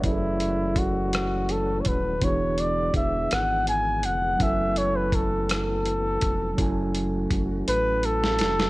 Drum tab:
HH |x-x-x-x-x-x-|x-x-x-x-x-x-|x-x-x-x-x-x-|x-x-x-x-x-x-|
SD |------r-----|------r-----|------r-----|---------ooo|
BD |o---o-----o-|o---o-------|o---o-----o-|o---o-------|